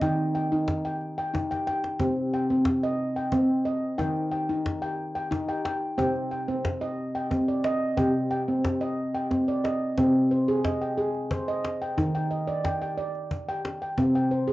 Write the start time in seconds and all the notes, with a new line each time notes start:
0.01 D#3 D#4 G5, cajon bass
0.18 cajon slap
0.35 G5
0.52 D#4
0.68 cajon bass, cajon slap
0.85 G5, cajon slap
1.01 cajon slap
1.18 G5
1.34 D#4, cajon bass
1.51 G5, cajon bass
1.67 G5, cajon slap
1.84 cajon slap
2.00 C3 C4, cajon bass
2.16 cajon slap
2.34 G5
2.50 C4, cajon slap
2.65 cajon bass, cajon slap
2.83 D#5
3.16 G5
3.32 C4, cajon bass
3.65 D#5
3.98 D#3 D#4 G5, cajon bass
4.16 cajon slap
4.32 G5
4.49 D#4, cajon slap
4.66 cajon bass, cajon slap
4.82 G5
5.15 G5
5.31 D#4, cajon bass
5.49 G5
5.65 G5, cajon slap
5.98 C3 C4 G5, cajon bass
6.16 cajon slap
6.31 G5
6.48 C4, cajon slap
6.65 cajon bass, cajon slap
6.81 D#5
7.15 G5
7.31 C4, cajon bass
7.48 D5
7.64 D#5, cajon slap
7.97 C3 C4 G5, cajon bass
8.31 G5, cajon slap
8.48 C4
8.65 cajon bass, cajon slap
8.81 D#5, cajon slap
9.15 G5, cajon slap
9.31 C4, cajon bass, cajon slap
9.48 D5, cajon slap
9.64 D#5, cajon slap
9.98 C3 C4, cajon bass
10.31 C5
10.48 G#4, cajon slap
10.65 D#5, cajon bass, cajon slap
10.81 G5
10.98 G#4
11.14 cajon slap
11.31 C5, cajon bass
11.48 D#5
11.65 cajon slap
11.81 G5, cajon slap
11.97 D#3 D#4, cajon bass
12.15 G5
12.31 D#5
12.47 D5, cajon slap
12.64 G5, cajon bass, cajon slap
12.82 G5
12.97 D5
13.15 cajon slap
13.31 cajon bass
13.48 G5
13.65 cajon slap
13.81 G5, cajon slap
13.98 C3 C4, cajon bass
14.15 G5
14.31 C5
14.47 G#4, cajon slap